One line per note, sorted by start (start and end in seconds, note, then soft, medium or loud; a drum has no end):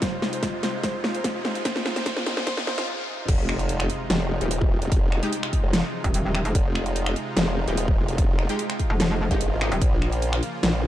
0.00 3.24 C3 medium
0.00 3.24 G#3 medium
0.00 3.24 D#4 medium
0.00 3.24 F4 medium
0.00 0.11 C5 medium
0.00 kick loud
0.00 snare medium
0.00 closed hi-hat medium
0.00 riser medium
0.12 0.21 F4 medium
0.22 0.31 F4 medium
0.22 snare medium
0.33 0.41 C5 medium
0.33 closed hi-hat medium
0.43 0.52 F4 medium
0.43 kick medium
0.43 snare medium
0.43 closed hi-hat medium
0.53 0.62 F4 medium
0.63 0.72 C5 medium
0.63 snare medium
0.63 closed hi-hat medium
0.74 0.82 F4 medium
0.84 0.93 C5 medium
0.84 kick loud
0.84 snare medium
0.84 closed hi-hat medium
0.94 1.03 F4 medium
1.04 1.13 F4 medium
1.04 snare medium
1.15 1.23 C5 medium
1.15 closed hi-hat medium
1.24 1.33 F4 medium
1.24 kick loud
1.24 snare medium
1.24 closed hi-hat medium
1.35 1.43 F4 medium
1.45 1.54 C5 medium
1.45 snare medium
1.55 1.64 F4 medium
1.55 closed hi-hat medium
1.65 1.74 C5 loud
1.65 kick loud
1.65 snare medium
1.65 closed hi-hat medium
1.76 1.84 F4 medium
1.76 snare medium
1.86 1.95 F4 medium
1.86 snare loud
1.96 2.04 C5 loud
1.96 snare medium
1.96 closed hi-hat medium
2.06 2.15 C5 loud
2.06 kick loud
2.06 snare medium
2.06 closed hi-hat medium
2.17 2.25 F4 medium
2.17 snare medium
2.26 2.35 F4 medium
2.26 snare loud
2.26 closed hi-hat medium
2.37 2.45 C5 medium
2.37 snare medium
2.47 2.56 C5 loud
2.47 kick loud
2.47 snare loud
2.47 closed hi-hat medium
2.47 swell medium
2.57 2.66 F4 medium
2.57 snare loud
2.67 2.76 C5 loud
2.67 snare loud
2.78 2.86 F4 medium
2.78 snare medium
2.78 closed hi-hat medium
3.28 3.88 F1 loud
3.28 9.78 C3 medium
3.28 9.78 G#3 medium
3.28 9.78 D#4 medium
3.28 10.87 F4 medium
3.28 kick loud
3.28 closed hi-hat medium
3.28 crash loud
3.28 impact medium
3.49 finger snap medium
3.59 closed hi-hat medium
3.69 closed hi-hat medium
3.80 finger snap medium
3.90 closed hi-hat medium
4.10 4.39 F1 loud
4.10 snare loud
4.10 closed hi-hat medium
4.41 4.80 D#1 medium
4.41 4.59 G#3 medium
4.41 4.59 D#4 medium
4.41 4.59 G4 medium
4.41 closed hi-hat medium
4.51 closed hi-hat medium
4.61 kick loud
4.82 5.21 F1 loud
4.82 closed hi-hat medium
4.92 kick loud
4.92 closed hi-hat medium
5.12 finger snap medium
5.23 5.34 G#3 medium
5.23 5.34 D#4 medium
5.23 5.34 G4 loud
5.23 closed hi-hat medium
5.33 closed hi-hat medium
5.43 finger snap medium
5.53 kick medium
5.53 closed hi-hat medium
5.64 5.82 F1 loud
5.73 snare loud
5.73 closed hi-hat medium
6.04 6.43 D#1 loud
6.04 kick medium
6.04 closed hi-hat medium
6.14 closed hi-hat medium
6.35 finger snap medium
6.45 6.53 F1 medium
6.45 closed hi-hat medium
6.55 7.15 F1 loud
6.55 kick loud
6.55 closed hi-hat medium
6.75 finger snap medium
6.86 closed hi-hat medium
6.96 closed hi-hat medium
7.06 finger snap medium
7.16 closed hi-hat medium
7.37 7.66 F1 loud
7.37 snare loud
7.37 closed hi-hat medium
7.68 8.07 D#1 medium
7.68 7.85 G#3 medium
7.68 7.85 D#4 medium
7.68 7.85 G4 medium
7.68 closed hi-hat medium
7.77 closed hi-hat medium
7.88 kick loud
8.08 8.48 F1 medium
8.08 closed hi-hat medium
8.18 kick loud
8.18 closed hi-hat medium
8.39 finger snap medium
8.49 8.60 G#3 medium
8.49 8.60 D#4 medium
8.49 8.60 G4 loud
8.49 closed hi-hat medium
8.59 closed hi-hat medium
8.70 finger snap medium
8.79 kick medium
8.79 closed hi-hat medium
8.90 9.29 F1 loud
9.00 snare loud
9.00 closed hi-hat medium
9.31 9.70 G#1 medium
9.31 9.42 G#3 medium
9.31 9.42 D#4 medium
9.31 9.42 G4 medium
9.31 kick medium
9.31 closed hi-hat medium
9.41 closed hi-hat medium
9.61 9.73 G#3 medium
9.61 9.73 D#4 medium
9.61 9.73 G4 loud
9.61 finger snap medium
9.72 9.80 D#1 loud
9.72 closed hi-hat medium
9.82 10.41 A#1 loud
9.82 10.87 C#3 medium
9.82 10.87 F3 medium
9.82 10.87 A#3 medium
9.82 kick loud
9.82 closed hi-hat medium
10.02 finger snap medium
10.12 closed hi-hat medium
10.22 closed hi-hat medium
10.33 finger snap medium
10.43 closed hi-hat medium
10.63 10.87 A#1 loud
10.63 snare loud
10.63 closed hi-hat medium